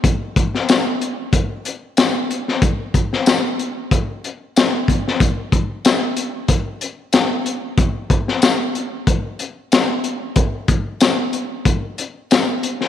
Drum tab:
HH |x-x-x-x-x-x-x-x-|x-x-x-x-x-x-x-x-|x-x-x-x-x-x-x-x-|x-x-x-x-x-x-x-x-|
TB |----x-------x---|----x-------x---|----x-------x---|----x-------x---|
SD |---oo-------o--o|---oo-------o--o|----o-------o---|---oo-------o---|
BD |o-o-----o-------|o-o-----o-----o-|o-o-----o-------|o-o-----o-------|

HH |x-x-x-x-x-x-x-x-|
TB |----x-------x---|
SD |----o-------o--o|
BD |o-o-----o-------|